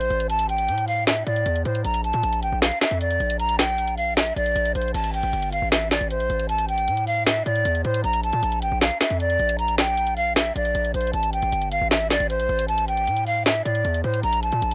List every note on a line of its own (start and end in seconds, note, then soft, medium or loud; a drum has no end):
0.00 0.10 A#1 loud
0.00 0.27 C5 loud
0.00 closed hi-hat medium
0.10 0.70 A1 loud
0.10 closed hi-hat soft
0.20 closed hi-hat medium
0.30 0.47 A5 medium
0.30 closed hi-hat medium
0.39 closed hi-hat medium
0.49 0.86 G5 medium
0.49 closed hi-hat medium
0.58 closed hi-hat medium
0.68 1.24 A2 loud
0.68 closed hi-hat medium
0.78 closed hi-hat medium
0.88 1.05 F5 medium
0.88 open hi-hat medium
1.07 1.24 E5 loud
1.07 finger snap medium
1.07 snare loud
1.07 closed hi-hat medium
1.17 closed hi-hat medium
1.26 1.45 A2 loud
1.26 1.63 D5 medium
1.26 closed hi-hat medium
1.36 closed hi-hat medium
1.46 1.65 E2 loud
1.46 closed hi-hat medium
1.56 closed hi-hat medium
1.65 1.84 A2 loud
1.65 1.82 C5 medium
1.65 closed hi-hat soft
1.75 closed hi-hat medium
1.85 2.13 A#1 loud
1.85 2.01 A#5 medium
1.85 closed hi-hat medium
1.94 closed hi-hat medium
2.04 2.40 A5 medium
2.04 closed hi-hat medium
2.13 2.23 A#2 loud
2.13 closed hi-hat medium
2.23 2.44 A#1 loud
2.23 closed hi-hat medium
2.33 closed hi-hat medium
2.43 2.52 A1 loud
2.43 2.59 G5 medium
2.43 closed hi-hat medium
2.52 2.71 A#1 loud
2.62 2.79 F5 medium
2.62 finger snap medium
2.62 snare loud
2.62 closed hi-hat medium
2.72 closed hi-hat medium
2.81 2.98 E5 medium
2.81 finger snap medium
2.81 snare medium
2.81 closed hi-hat medium
2.91 3.19 F2 loud
2.91 closed hi-hat medium
3.01 3.37 D5 medium
3.01 closed hi-hat medium
3.11 closed hi-hat medium
3.20 4.32 A#1 loud
3.20 closed hi-hat soft
3.30 closed hi-hat medium
3.39 3.56 A#5 loud
3.39 closed hi-hat medium
3.49 closed hi-hat medium
3.59 3.95 G5 loud
3.59 finger snap medium
3.59 snare loud
3.59 closed hi-hat medium
3.68 closed hi-hat medium
3.78 closed hi-hat medium
3.88 closed hi-hat medium
3.97 4.14 F5 medium
3.97 open hi-hat medium
4.17 4.33 E5 medium
4.17 finger snap medium
4.17 snare loud
4.17 closed hi-hat medium
4.26 closed hi-hat medium
4.36 4.55 A#1 loud
4.36 4.73 D5 medium
4.36 closed hi-hat medium
4.46 closed hi-hat medium
4.56 4.74 A#1 loud
4.56 closed hi-hat medium
4.66 closed hi-hat medium
4.75 4.94 A#1 loud
4.75 4.92 C5 medium
4.75 closed hi-hat medium
4.82 closed hi-hat medium
4.88 closed hi-hat soft
4.94 5.22 A1 loud
4.94 5.11 A5 medium
4.94 closed hi-hat medium
4.94 crash loud
5.04 closed hi-hat medium
5.13 5.50 G5 medium
5.13 closed hi-hat medium
5.23 5.32 A1 loud
5.23 closed hi-hat medium
5.33 5.61 G1 loud
5.33 closed hi-hat medium
5.42 closed hi-hat medium
5.52 5.69 F5 medium
5.52 closed hi-hat medium
5.62 5.99 A1 loud
5.72 5.88 E5 medium
5.72 finger snap medium
5.72 snare loud
5.72 closed hi-hat medium
5.81 closed hi-hat medium
5.91 6.08 D5 medium
5.91 finger snap medium
5.91 snare medium
5.91 closed hi-hat medium
6.01 6.22 A1 loud
6.01 closed hi-hat medium
6.10 6.47 C5 loud
6.10 closed hi-hat medium
6.20 6.29 A#1 loud
6.20 closed hi-hat medium
6.30 6.89 A1 loud
6.30 closed hi-hat soft
6.40 closed hi-hat medium
6.49 6.66 A5 medium
6.49 closed hi-hat medium
6.59 closed hi-hat medium
6.69 7.05 G5 medium
6.69 closed hi-hat medium
6.78 closed hi-hat medium
6.88 7.43 A2 loud
6.88 closed hi-hat medium
6.97 closed hi-hat medium
7.07 7.24 F5 medium
7.07 open hi-hat medium
7.26 7.43 E5 medium
7.26 finger snap medium
7.26 snare loud
7.26 closed hi-hat medium
7.36 closed hi-hat medium
7.46 7.65 A2 loud
7.46 7.82 D5 medium
7.46 closed hi-hat medium
7.56 closed hi-hat medium
7.65 7.84 E2 loud
7.65 closed hi-hat medium
7.75 closed hi-hat medium
7.85 8.03 A2 loud
7.85 8.01 C5 medium
7.85 closed hi-hat soft
7.94 closed hi-hat medium
8.04 8.32 A#1 loud
8.04 8.21 A#5 medium
8.04 closed hi-hat medium
8.13 closed hi-hat medium
8.24 8.60 A5 medium
8.24 closed hi-hat medium
8.33 8.42 A#2 loud
8.33 closed hi-hat medium
8.43 8.64 A#1 loud
8.43 closed hi-hat medium
8.52 closed hi-hat medium
8.62 8.71 A1 loud
8.62 8.79 G5 medium
8.62 closed hi-hat medium
8.72 8.90 A#1 loud
8.81 8.98 F5 medium
8.81 finger snap medium
8.81 snare loud
8.81 closed hi-hat medium
8.91 closed hi-hat medium
9.01 9.18 E5 medium
9.01 finger snap medium
9.01 snare medium
9.01 closed hi-hat medium
9.10 9.38 F2 loud
9.10 closed hi-hat medium
9.20 9.57 D5 medium
9.20 closed hi-hat medium
9.30 closed hi-hat medium
9.39 10.52 A#1 loud
9.39 closed hi-hat soft
9.49 closed hi-hat medium
9.59 9.76 A#5 medium
9.59 closed hi-hat medium
9.68 closed hi-hat medium
9.78 10.15 G5 loud
9.78 finger snap medium
9.78 snare loud
9.78 closed hi-hat medium
9.87 closed hi-hat medium
9.97 closed hi-hat medium
10.07 closed hi-hat medium
10.17 10.34 F5 medium
10.17 open hi-hat medium
10.36 10.53 E5 medium
10.36 finger snap medium
10.36 snare loud
10.36 closed hi-hat medium
10.46 closed hi-hat medium
10.56 10.74 A#1 loud
10.56 10.92 D5 medium
10.56 closed hi-hat medium
10.65 closed hi-hat medium
10.75 10.94 A#1 loud
10.75 closed hi-hat medium
10.85 closed hi-hat medium
10.94 11.13 A#1 loud
10.94 11.11 C5 medium
10.94 closed hi-hat medium
11.01 closed hi-hat medium
11.07 closed hi-hat soft
11.13 11.42 A1 loud
11.13 11.30 A5 medium
11.13 closed hi-hat medium
11.23 closed hi-hat medium
11.33 11.69 G5 medium
11.33 closed hi-hat medium
11.42 11.52 A1 loud
11.42 closed hi-hat medium
11.52 11.80 G1 loud
11.52 closed hi-hat medium
11.62 closed hi-hat medium
11.72 11.88 F5 medium
11.72 closed hi-hat medium
11.81 12.19 A1 loud
11.91 12.08 E5 medium
11.91 finger snap medium
11.91 snare loud
11.91 closed hi-hat medium
12.01 closed hi-hat medium
12.10 12.27 D5 medium
12.10 finger snap medium
12.10 snare medium
12.10 closed hi-hat medium
12.20 12.41 A1 loud
12.20 closed hi-hat medium
12.30 12.66 C5 loud
12.30 closed hi-hat medium
12.39 12.49 A#1 loud
12.39 closed hi-hat medium
12.49 13.09 A1 loud
12.49 closed hi-hat soft
12.59 closed hi-hat medium
12.68 12.85 A5 medium
12.68 closed hi-hat medium
12.78 closed hi-hat medium
12.88 13.24 G5 medium
12.88 closed hi-hat medium
12.97 closed hi-hat medium
13.07 13.62 A2 loud
13.07 closed hi-hat medium
13.17 closed hi-hat medium
13.27 13.43 F5 medium
13.27 open hi-hat medium
13.46 13.63 E5 medium
13.46 finger snap medium
13.46 snare loud
13.46 closed hi-hat medium
13.55 closed hi-hat medium
13.65 13.84 A2 loud
13.65 14.01 D5 medium
13.65 closed hi-hat loud
13.75 closed hi-hat medium
13.85 14.03 E2 loud
13.85 closed hi-hat medium
13.94 closed hi-hat medium
14.04 14.23 A2 loud
14.04 14.21 C5 medium
14.04 closed hi-hat soft
14.14 closed hi-hat medium
14.23 14.51 A#1 loud
14.23 14.40 A#5 medium
14.23 closed hi-hat medium
14.33 closed hi-hat medium
14.43 14.74 A5 medium
14.43 closed hi-hat medium
14.52 14.62 A#2 loud
14.52 closed hi-hat soft
14.62 14.74 A#1 loud
14.62 closed hi-hat medium